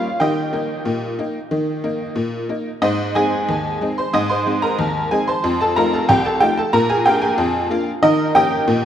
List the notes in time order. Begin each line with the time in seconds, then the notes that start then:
Already playing: F4 F5
0.20 D#3 G4 D#5 G5
0.53 A#3 D#4
0.85 A#2
1.19 A#3 D#4
1.51 D#3
1.84 A#3 D#4
2.16 A#2
2.49 A#3 D#4
2.82 G#2 D#4 C5 D#5
3.15 G#3 C4 D#4 G#4 D#5 G#5
3.49 D#2
3.81 G#3 C4 D#4
3.98 C5 C6
4.13 G#2 D#5 D#6
4.30 C5 C6
4.46 G#3 C4 D#4
4.62 A#4 A#5
4.79 D#2
5.11 G#3 C4 D#4 G#4 G#5
5.28 C5 A5 C6
5.44 F2
5.61 A4 A5
5.76 A3 D#4 F4 A#4 A#5
5.93 A4 A5
6.09 C2 G4 G5
6.25 A4 A5
6.40 A3 D#4 F4 G4 G5
6.58 A4 A5
6.73 A#2 A#4 A#5
6.90 G#4 G#5
7.06 A#3 D4 F4 G4 G5
7.22 G#4 G#5
7.38 F2
7.71 A#3 D4 F4
8.03 D#3 D#4 A#4 D#5
8.35 A#3 C#4 D#4 G4 D#5 G5
8.68 A#2